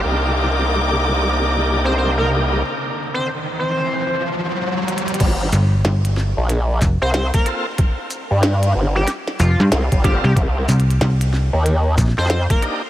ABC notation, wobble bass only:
X:1
M:4/4
L:1/16
Q:"Swing 16ths" 1/4=93
K:Gm
V:1 name="Wobble bass" clef=bass
C,,16 | z16 | G,,,2 z4 z B,,,3 z C,,2 z3 | z3 G,,3 G,,,2 z4 C,, G,,,2 z |
C,,2 z4 z E,,3 z F,,2 z3 |]